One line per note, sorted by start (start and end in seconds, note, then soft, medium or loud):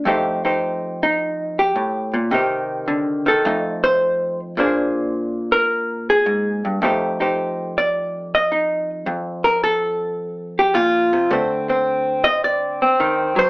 0.05 1.75 F2 medium
0.05 2.30 A3 soft
0.05 0.44 D#4 soft
0.05 0.45 G4 medium
0.05 0.45 C5 soft
0.45 1.03 D#4 soft
0.45 1.57 G4 soft
0.45 2.34 C5 soft
1.03 1.58 D#4 medium
1.59 2.14 G4 medium
1.76 2.14 A2 medium
2.14 2.32 A#2 medium
2.31 3.42 C3 medium
2.31 3.25 D#3 soft
2.31 3.42 D#4 soft
2.31 3.27 G4 soft
2.31 3.83 C5 soft
2.88 3.26 D3 medium
3.26 3.44 D#3 medium
3.26 3.83 A4 medium
3.45 4.57 F2 medium
3.45 4.56 A3 soft
3.45 4.56 D#4 medium
3.84 4.39 C5 loud
4.57 6.82 A#2 medium
4.57 6.80 A#3 soft
4.57 6.81 D4 soft
4.57 5.52 G#4 soft
4.57 6.84 C5 soft
5.52 6.08 A#4 medium
6.10 6.65 G#4 medium
6.26 6.64 G#2 medium
6.65 6.81 G2 medium
6.82 9.05 F2 medium
6.82 9.47 A3 soft
6.82 7.20 D#4 soft
6.82 7.20 G4 soft
6.82 7.21 C5 soft
7.20 8.51 D#4 soft
7.20 9.05 G4 soft
7.20 7.77 C5 soft
7.78 8.33 D5 medium
8.35 8.90 D#5 loud
8.52 9.05 D#4 medium
9.06 11.30 F2 medium
9.44 9.63 A#4 loud
9.64 10.57 A4 medium
10.59 10.76 G4 medium
10.74 11.13 A#2 medium
10.74 11.31 F4 medium
11.13 11.31 C3 medium
11.31 13.50 D3 medium
11.31 13.00 A3 soft
11.31 11.68 C4 soft
11.31 11.69 C5 soft
11.69 12.81 C4 soft
11.69 12.24 C5 soft
12.24 12.43 D#5 loud
12.44 13.38 D5 medium
12.82 13.50 C4 medium
13.00 13.36 D#3 medium
13.36 13.50 F#3 medium
13.36 13.50 C5 medium